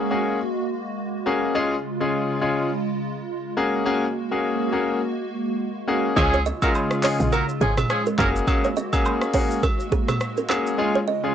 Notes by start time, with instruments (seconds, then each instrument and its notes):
Already playing: analog synth pad G#3 A#3 F#4
0.11 grand piano A#3 C#4 F#4 G#4
1.26 grand piano A#3 C#4 F#4 G#4
1.55 analog synth pad C#3 G#3 F4, grand piano G#3 C#4 F4 G#4
2.00 grand piano G#3 C#4 F4 G#4
2.41 grand piano G#3 C#4 F4 G#4
3.57 analog synth pad G#3 A#3 F#4, grand piano A#3 C#4 F#4 G#4
3.85 grand piano A#3 C#4 F#4 G#4
4.31 grand piano A#3 C#4 F#4 G#4
4.72 grand piano A#3 C#4 F#4 G#4
5.87 grand piano A#3 C#4 F#4 G#4
6.16 log drum bass C#2, analog synth pad C#3 F4, horn section F3 C#4 G#4, grand piano G#3 C#4 F4 G#4, kick, high agogo, shaker
6.34 kalimba C#5, shaker
6.46 kalimba D#5, shaker
6.62 grand piano G#3 C#4 F4 G#4, horn section A#3 F#4 A#4, kick, high agogo, shaker
6.75 low woodblock, shaker
6.91 cross-stick, shaker
7.03 horn section F3 C#4 G#4, grand piano G#3 C#4 F4 G#4, kalimba C#5, clap, open hi-hat, shaker
7.20 log drum bass A#1, shaker
7.32 horn section A#3 F#4 A#4, kalimba A#4, high agogo, shaker
7.49 shaker
7.61 log drum bass G#1, horn section F3 C#4 G#4, kalimba G#4, shaker
7.77 kalimba G#4, cross-stick, mid tom, high agogo, shaker
7.90 horn section F3 C#4 G#4, cross-stick, shaker
8.06 kalimba A#4, shaker
8.18 log drum bass F#1, horn section F#3 C#4 A#4, grand piano A#3 C#4 F#4 G#4, analog synth pad A#3 F#4, kalimba G#4, kick, cross-stick, clap, high agogo, shaker
8.36 shaker
8.47 grand piano A#3 C#4 F#4 G#4, kick, high agogo, shaker
8.64 kalimba C#5, shaker
8.76 kalimba D#5, shaker
8.93 grand piano A#3 C#4 F#4 G#4, kick, high agogo, shaker
9.05 low woodblock, shaker
9.21 cross-stick, shaker
9.34 grand piano A#3 C#4 F#4 G#4, kalimba C#5, kick, open hi-hat, shaker
9.51 shaker
9.63 kalimba A#4, kick, high agogo, shaker
9.80 shaker
9.92 kalimba G#4, kick, shaker
10.08 kalimba G#4, cross-stick, mid tom, high agogo, shaker
10.20 cross-stick, shaker
10.37 kalimba A#4, shaker
10.49 grand piano A#3 C#4 F#4 G#4, kalimba G#4, cross-stick, clap, high agogo, shaker
10.67 shaker
10.78 analog synth pad C#3 F4, grand piano G#3 C#4 F4 G#4
10.95 kalimba C#5
11.08 kalimba D#5
11.24 grand piano G#3 C#4 F4 G#4